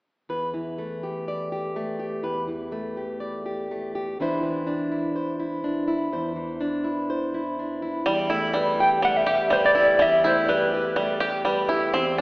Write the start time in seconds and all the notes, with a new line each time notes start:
0.29 E2 B4
0.54 E3
0.78 A3
1.03 G4
1.28 D5
1.52 G4
1.76 A3
1.99 G4
2.23 E2 B4
2.48 E3
2.72 A3
2.97 G4
3.20 D5
3.46 G4
3.71 A3
3.95 G4
4.20 E2 E3 D4 E4 C5
4.43 E3
4.67 D4
4.92 E4
5.16 C5
5.40 E4
5.64 D4
5.88 E4
6.13 E2 C5
6.36 E3
6.61 D4
6.84 E4
7.10 C5
7.34 E4
7.59 D4
7.82 E4
8.06 E2 G3
8.30 A3 E4
8.53 G3 B4
8.80 G4 G5
9.02 G3 A3 F#5
9.17 E5
9.27 G4
9.50 G3 B4 C5
9.66 D5
9.75 E4 G4
9.99 E2 G3 E5
10.24 A3 E4 C5
10.49 G3 G4 B4
10.74 G4
10.96 G3 A3
11.20 G4
11.45 G3 B4
11.69 E4 G4
11.94 E2 C4